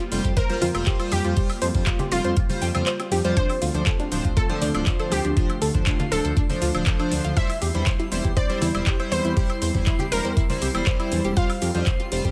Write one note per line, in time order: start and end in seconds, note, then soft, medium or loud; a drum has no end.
0.00 3.33 G3 medium
0.00 3.33 A#3 medium
0.00 7.33 F4 medium
0.00 0.27 C5 loud
0.12 0.20 F1 medium
0.12 0.31 G3 medium
0.12 0.31 F4 medium
0.12 0.31 C5 medium
0.12 open hi-hat loud
0.12 shaker medium
0.25 0.33 F2 medium
0.25 0.33 G4 medium
0.25 kick medium
0.25 closed hi-hat soft
0.25 shaker soft
0.37 1.02 A#4 loud
0.37 0.46 C5 medium
0.37 kick loud
0.37 closed hi-hat medium
0.37 shaker soft
0.50 0.68 G3 medium
0.50 0.68 F4 medium
0.50 0.68 C5 loud
0.50 closed hi-hat soft
0.50 high conga medium
0.50 shaker soft
0.61 0.70 F2 medium
0.61 0.68 F4 loud
0.61 open hi-hat loud
0.61 low conga medium
0.61 shaker medium
0.75 0.83 F1 medium
0.75 0.97 G3 medium
0.75 0.97 F4 medium
0.75 0.97 C5 medium
0.75 closed hi-hat soft
0.75 high woodblock medium
0.75 shaker soft
0.86 0.96 G4 medium
0.86 kick loud
0.86 clap loud
0.86 closed hi-hat medium
0.86 shaker soft
1.00 1.34 G3 medium
1.00 1.34 F4 medium
1.00 1.03 C5 medium
1.00 1.34 C5 medium
1.00 closed hi-hat soft
1.00 high woodblock medium
1.00 shaker soft
1.12 1.21 F2 medium
1.12 2.02 G4 medium
1.12 open hi-hat loud
1.12 high conga loud
1.12 shaker medium
1.25 1.33 F2 medium
1.25 1.33 F4 medium
1.25 closed hi-hat soft
1.25 shaker soft
1.37 1.49 G3 loud
1.37 1.49 F4 medium
1.37 1.46 G4 medium
1.37 1.49 C5 loud
1.37 kick loud
1.37 closed hi-hat medium
1.37 shaker soft
1.50 open hi-hat medium
1.50 high woodblock medium
1.50 shaker soft
1.62 1.71 F2 medium
1.62 1.68 C5 loud
1.62 open hi-hat loud
1.62 shaker medium
1.75 1.83 F2 medium
1.75 1.86 G3 medium
1.75 1.86 F4 medium
1.75 1.86 C5 medium
1.75 kick medium
1.75 closed hi-hat soft
1.75 high conga medium
1.75 shaker soft
1.86 1.96 F4 medium
1.86 kick loud
1.86 clap loud
1.86 closed hi-hat medium
1.86 shaker soft
1.99 2.03 G4 medium
1.99 closed hi-hat soft
1.99 high bongo medium
1.99 low conga loud
1.99 shaker soft
2.12 2.20 F1 medium
2.12 2.31 G3 medium
2.12 2.57 F4 medium
2.12 2.31 F4 medium
2.12 2.31 C5 medium
2.12 open hi-hat loud
2.12 shaker medium
2.24 2.33 F2 medium
2.24 2.33 C5 medium
2.24 closed hi-hat soft
2.24 shaker soft
2.37 2.43 F4 loud
2.37 kick loud
2.37 closed hi-hat medium
2.37 shaker soft
2.49 2.68 G3 medium
2.49 2.68 F4 medium
2.49 2.68 C5 medium
2.49 open hi-hat medium
2.49 high conga medium
2.49 low conga medium
2.49 shaker soft
2.62 2.70 F2 medium
2.62 2.65 G5 medium
2.62 open hi-hat loud
2.62 shaker medium
2.75 2.83 F2 medium
2.75 2.93 G3 medium
2.75 2.93 F4 medium
2.75 2.93 C5 loud
2.75 closed hi-hat soft
2.75 low conga medium
2.75 high woodblock medium
2.75 shaker soft
2.87 2.96 C5 medium
2.87 clap loud
2.87 closed hi-hat medium
2.87 shaker soft
3.00 closed hi-hat soft
3.00 high bongo medium
3.00 high woodblock medium
3.00 shaker soft
3.11 3.20 F2 loud
3.11 3.18 G4 loud
3.11 open hi-hat loud
3.11 high conga medium
3.11 shaker medium
3.25 3.33 F2 medium
3.25 3.35 G3 loud
3.25 3.35 F4 medium
3.25 3.30 C5 medium
3.25 3.35 C5 loud
3.25 closed hi-hat soft
3.25 shaker soft
3.37 7.33 D3 medium
3.37 7.33 A3 medium
3.37 5.35 C4 medium
3.37 3.46 D4 medium
3.37 4.27 C5 loud
3.37 12.31 C7 medium
3.37 kick loud
3.37 closed hi-hat medium
3.37 shaker soft
3.50 open hi-hat medium
3.50 high woodblock medium
3.50 shaker soft
3.62 3.71 D2 medium
3.62 3.68 F4 medium
3.62 open hi-hat loud
3.62 shaker medium
3.74 3.83 D2 medium
3.74 3.86 F3 medium
3.74 3.86 D4 medium
3.74 3.86 C5 medium
3.74 closed hi-hat soft
3.74 high conga loud
3.74 shaker soft
3.86 3.96 A4 medium
3.86 kick loud
3.86 clap loud
3.86 closed hi-hat medium
3.86 shaker soft
4.00 4.03 D4 medium
4.00 closed hi-hat soft
4.00 high bongo medium
4.00 shaker soft
4.12 4.21 D1 medium
4.12 4.31 F3 medium
4.12 4.31 D4 medium
4.12 4.31 C5 medium
4.12 open hi-hat loud
4.12 shaker medium
4.25 4.33 D2 medium
4.25 4.33 F4 medium
4.25 kick medium
4.25 closed hi-hat soft
4.25 shaker soft
4.37 4.46 A4 medium
4.37 5.02 A4 medium
4.37 kick loud
4.37 closed hi-hat medium
4.37 shaker soft
4.50 4.68 F3 medium
4.50 4.68 D4 medium
4.50 4.68 C5 medium
4.50 closed hi-hat soft
4.50 high conga medium
4.50 shaker soft
4.61 4.70 D2 loud
4.61 4.68 D4 loud
4.61 open hi-hat loud
4.61 low conga medium
4.61 shaker medium
4.75 4.83 D1 medium
4.75 4.97 F3 medium
4.75 4.97 D4 medium
4.75 4.97 C5 loud
4.75 closed hi-hat soft
4.75 high woodblock medium
4.75 shaker soft
4.87 4.96 F4 medium
4.87 kick loud
4.87 clap loud
4.87 closed hi-hat medium
4.87 shaker soft
5.00 5.34 F3 medium
5.00 5.34 D4 medium
5.00 5.03 A4 medium
5.00 5.34 C5 medium
5.00 closed hi-hat soft
5.00 high woodblock medium
5.00 shaker soft
5.11 5.20 D2 loud
5.11 6.02 G4 medium
5.11 open hi-hat loud
5.11 high conga loud
5.11 shaker medium
5.25 5.33 D2 medium
5.25 5.33 D4 medium
5.25 closed hi-hat soft
5.25 shaker soft
5.37 5.49 F3 loud
5.37 7.35 D4 medium
5.37 5.49 D4 medium
5.37 5.46 F4 medium
5.37 5.49 C5 loud
5.37 kick loud
5.37 closed hi-hat medium
5.37 shaker soft
5.50 closed hi-hat soft
5.50 high woodblock medium
5.50 shaker soft
5.62 5.70 D2 medium
5.62 5.68 A4 loud
5.62 open hi-hat loud
5.62 shaker medium
5.75 5.83 D2 medium
5.75 5.86 F3 medium
5.75 5.86 D4 medium
5.75 5.86 C5 medium
5.75 kick medium
5.75 closed hi-hat soft
5.75 high conga medium
5.75 shaker soft
5.87 5.96 D4 medium
5.87 kick loud
5.87 clap loud
5.87 closed hi-hat medium
5.87 shaker soft
5.99 6.03 F4 medium
5.99 closed hi-hat soft
5.99 high bongo medium
5.99 low conga loud
5.99 shaker soft
6.12 6.20 D1 medium
6.12 6.31 F3 medium
6.12 6.31 D4 medium
6.12 6.57 A4 medium
6.12 6.31 C5 medium
6.12 open hi-hat loud
6.12 shaker medium
6.25 6.33 D2 medium
6.25 6.33 A4 medium
6.25 closed hi-hat soft
6.25 shaker soft
6.37 6.43 D4 loud
6.37 kick loud
6.37 closed hi-hat medium
6.37 shaker soft
6.50 6.68 F3 medium
6.50 6.68 D4 medium
6.50 6.68 C5 loud
6.50 open hi-hat medium
6.50 high conga medium
6.50 low conga medium
6.50 shaker soft
6.62 6.70 D2 loud
6.62 6.68 F4 medium
6.62 open hi-hat loud
6.62 shaker medium
6.75 6.83 D1 medium
6.75 6.97 F3 medium
6.75 6.97 D4 medium
6.75 6.97 C5 loud
6.75 closed hi-hat soft
6.75 high woodblock medium
6.75 shaker soft
6.87 6.96 A4 medium
6.87 kick loud
6.87 clap loud
6.87 closed hi-hat medium
6.87 shaker soft
7.00 7.34 F3 medium
7.00 7.03 D4 medium
7.00 7.34 D4 medium
7.00 7.34 C5 medium
7.00 closed hi-hat soft
7.00 high woodblock medium
7.00 shaker soft
7.11 7.20 D2 loud
7.11 open hi-hat loud
7.11 high conga medium
7.11 shaker medium
7.24 7.33 D2 medium
7.24 7.33 F4 medium
7.24 closed hi-hat soft
7.24 shaker soft
7.37 7.49 G3 loud
7.37 11.33 G3 medium
7.37 12.31 C4 medium
7.37 7.46 E4 medium
7.37 7.49 E4 medium
7.37 11.33 E4 medium
7.37 7.49 C5 loud
7.37 8.27 E5 loud
7.37 kick loud
7.37 closed hi-hat medium
7.37 shaker soft
7.50 open hi-hat medium
7.50 high woodblock medium
7.50 shaker soft
7.62 7.70 E2 medium
7.62 7.68 G4 medium
7.62 open hi-hat loud
7.62 shaker medium
7.75 7.83 E2 medium
7.75 7.86 G3 medium
7.75 7.86 E4 medium
7.75 7.86 C5 medium
7.75 closed hi-hat soft
7.75 high conga medium
7.75 shaker soft
7.87 7.96 C5 medium
7.87 kick loud
7.87 clap loud
7.87 closed hi-hat medium
7.87 shaker soft
7.99 8.03 E4 medium
7.99 closed hi-hat soft
7.99 high bongo medium
7.99 shaker soft
8.12 8.20 E1 medium
8.12 8.31 G3 medium
8.12 8.31 E4 medium
8.12 8.31 C5 medium
8.12 open hi-hat loud
8.12 shaker medium
8.25 8.33 E2 medium
8.25 8.33 G4 medium
8.25 kick medium
8.25 closed hi-hat soft
8.25 shaker soft
8.37 8.46 C5 medium
8.37 9.02 D5 loud
8.37 kick loud
8.37 closed hi-hat medium
8.37 shaker soft
8.49 8.68 G3 medium
8.49 8.68 E4 medium
8.49 8.68 C5 loud
8.49 closed hi-hat soft
8.49 high conga medium
8.49 shaker soft
8.61 8.70 E2 medium
8.61 8.68 E4 loud
8.61 open hi-hat loud
8.61 low conga medium
8.61 shaker medium
8.75 8.83 E1 medium
8.75 8.97 G3 medium
8.75 8.97 E4 medium
8.75 8.97 C5 loud
8.75 closed hi-hat soft
8.75 high woodblock medium
8.75 shaker soft
8.87 8.96 G4 medium
8.87 kick loud
8.87 clap loud
8.87 closed hi-hat medium
8.87 shaker soft
9.00 9.34 G3 medium
9.00 9.34 E4 medium
9.00 9.34 C5 medium
9.00 9.03 C5 medium
9.00 closed hi-hat soft
9.00 high woodblock medium
9.00 shaker soft
9.12 9.20 E2 loud
9.12 10.02 C5 medium
9.12 open hi-hat loud
9.12 high conga medium
9.12 shaker medium
9.25 9.33 E2 medium
9.25 9.33 E4 medium
9.25 closed hi-hat soft
9.25 shaker soft
9.37 9.49 G3 loud
9.37 9.49 E4 medium
9.37 9.46 G4 medium
9.37 9.49 C5 loud
9.37 kick loud
9.37 closed hi-hat medium
9.37 shaker soft
9.50 closed hi-hat soft
9.50 high woodblock medium
9.50 shaker soft
9.62 9.70 E2 medium
9.62 9.68 C5 loud
9.62 open hi-hat loud
9.62 shaker medium
9.74 9.83 E2 medium
9.74 9.86 G3 medium
9.74 9.86 E4 medium
9.74 9.86 C5 medium
9.74 kick medium
9.74 closed hi-hat soft
9.74 high bongo medium
9.74 high conga medium
9.74 shaker soft
9.87 9.96 E4 medium
9.87 kick loud
9.87 clap loud
9.87 closed hi-hat medium
9.87 shaker soft
9.99 10.03 G4 medium
9.99 closed hi-hat soft
9.99 high bongo medium
9.99 low conga medium
9.99 shaker soft
10.12 10.20 E1 medium
10.12 10.31 G3 medium
10.12 10.31 E4 medium
10.12 10.57 A#4 medium
10.12 10.31 C5 medium
10.12 open hi-hat loud
10.12 shaker medium
10.25 10.33 E2 medium
10.25 10.33 C5 medium
10.25 closed hi-hat soft
10.25 shaker soft
10.37 10.43 E4 loud
10.37 kick loud
10.37 closed hi-hat medium
10.37 shaker soft
10.50 10.68 G3 medium
10.50 10.68 E4 medium
10.50 10.68 C5 loud
10.50 open hi-hat medium
10.50 high conga medium
10.50 low conga medium
10.50 shaker soft
10.62 10.70 C2 loud
10.62 10.68 G4 medium
10.62 open hi-hat loud
10.62 shaker medium
10.75 10.83 E1 medium
10.75 10.97 G3 medium
10.75 10.97 E4 medium
10.75 10.97 C5 loud
10.75 closed hi-hat soft
10.75 high woodblock medium
10.75 shaker soft
10.87 10.96 C5 medium
10.87 kick loud
10.87 clap loud
10.87 closed hi-hat medium
10.87 shaker soft
11.00 11.34 G3 medium
11.00 11.03 E4 medium
11.00 11.34 E4 medium
11.00 11.34 C5 medium
11.00 closed hi-hat soft
11.00 high woodblock medium
11.00 shaker soft
11.12 11.20 E2 medium
11.12 open hi-hat loud
11.12 high conga medium
11.12 shaker medium
11.25 11.33 E1 medium
11.25 11.33 G4 medium
11.25 closed hi-hat soft
11.25 shaker soft
11.37 12.31 G3 medium
11.37 11.49 G3 loud
11.37 12.31 F4 medium
11.37 11.49 F4 medium
11.37 11.46 F4 medium
11.37 11.49 C5 loud
11.37 12.27 F5 loud
11.37 kick loud
11.37 closed hi-hat medium
11.37 shaker soft
11.50 open hi-hat medium
11.50 high woodblock medium
11.50 shaker soft
11.62 11.70 F2 medium
11.62 11.68 G4 medium
11.62 open hi-hat loud
11.62 shaker medium
11.75 11.83 F2 medium
11.75 11.86 G3 medium
11.75 11.86 F4 medium
11.75 11.86 C5 medium
11.75 closed hi-hat soft
11.75 high conga medium
11.75 shaker soft
11.87 11.96 C5 medium
11.87 kick loud
11.87 clap loud
11.87 closed hi-hat medium
11.87 shaker soft
12.00 12.03 F4 medium
12.00 closed hi-hat soft
12.00 high bongo medium
12.00 shaker soft
12.12 12.21 F1 medium
12.12 12.31 G3 medium
12.12 12.31 F4 medium
12.12 12.31 C5 medium
12.12 open hi-hat loud
12.12 shaker medium
12.25 12.31 F2 medium
12.25 12.31 G4 medium
12.25 kick medium
12.25 closed hi-hat soft
12.25 shaker soft